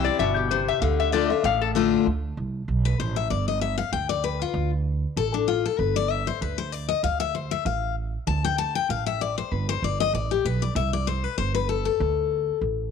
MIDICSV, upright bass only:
0, 0, Header, 1, 2, 480
1, 0, Start_track
1, 0, Tempo, 310559
1, 1267, Time_signature, 4, 2, 24, 8
1, 19957, End_track
2, 0, Start_track
2, 0, Title_t, "Upright bass"
2, 0, Program_c, 0, 32
2, 298, Note_on_c, 0, 31, 89
2, 1068, Note_off_c, 0, 31, 0
2, 1259, Note_on_c, 0, 38, 92
2, 2029, Note_off_c, 0, 38, 0
2, 2220, Note_on_c, 0, 33, 85
2, 2990, Note_off_c, 0, 33, 0
2, 3189, Note_on_c, 0, 38, 97
2, 3572, Note_off_c, 0, 38, 0
2, 3666, Note_on_c, 0, 36, 83
2, 4076, Note_off_c, 0, 36, 0
2, 4142, Note_on_c, 0, 35, 84
2, 4554, Note_off_c, 0, 35, 0
2, 4627, Note_on_c, 0, 33, 92
2, 5037, Note_off_c, 0, 33, 0
2, 5107, Note_on_c, 0, 31, 93
2, 5875, Note_off_c, 0, 31, 0
2, 6066, Note_on_c, 0, 38, 83
2, 6834, Note_off_c, 0, 38, 0
2, 7012, Note_on_c, 0, 38, 95
2, 7786, Note_off_c, 0, 38, 0
2, 7983, Note_on_c, 0, 33, 82
2, 8753, Note_off_c, 0, 33, 0
2, 8945, Note_on_c, 0, 31, 92
2, 9714, Note_off_c, 0, 31, 0
2, 9911, Note_on_c, 0, 38, 85
2, 10678, Note_off_c, 0, 38, 0
2, 10869, Note_on_c, 0, 38, 88
2, 11636, Note_off_c, 0, 38, 0
2, 11826, Note_on_c, 0, 33, 82
2, 12595, Note_off_c, 0, 33, 0
2, 12783, Note_on_c, 0, 38, 96
2, 13553, Note_off_c, 0, 38, 0
2, 13743, Note_on_c, 0, 33, 79
2, 14513, Note_off_c, 0, 33, 0
2, 14709, Note_on_c, 0, 31, 92
2, 15094, Note_off_c, 0, 31, 0
2, 15184, Note_on_c, 0, 31, 86
2, 15596, Note_off_c, 0, 31, 0
2, 15662, Note_on_c, 0, 33, 82
2, 16074, Note_off_c, 0, 33, 0
2, 16147, Note_on_c, 0, 35, 83
2, 16557, Note_off_c, 0, 35, 0
2, 16618, Note_on_c, 0, 36, 98
2, 17388, Note_off_c, 0, 36, 0
2, 17584, Note_on_c, 0, 31, 82
2, 18351, Note_off_c, 0, 31, 0
2, 18551, Note_on_c, 0, 38, 101
2, 19315, Note_off_c, 0, 38, 0
2, 19496, Note_on_c, 0, 33, 82
2, 19957, Note_off_c, 0, 33, 0
2, 19957, End_track
0, 0, End_of_file